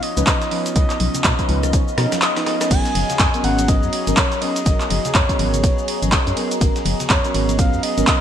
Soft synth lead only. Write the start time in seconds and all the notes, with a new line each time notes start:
0.03 D#5
0.76 D#5
2.22 D#5
2.71 G#5
3.44 F#5
3.69 D#5
4.18 C#5
4.42 D#5
4.91 D#5
5.15 C#5
7.10 C#5
7.59 F5
7.83 D#5